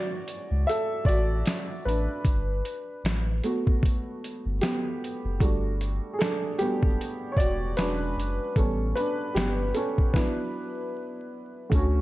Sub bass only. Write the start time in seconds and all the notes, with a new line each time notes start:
0.51 C#2
1.05 A1
1.85 A1
2.25 G1
3.04 A1
4.46 G1
5.25 F#1
5.41 G1
6.83 F#1
7.37 E1
7.77 E1
8.17 F#1
8.56 A1
9.35 G1
11.72 D2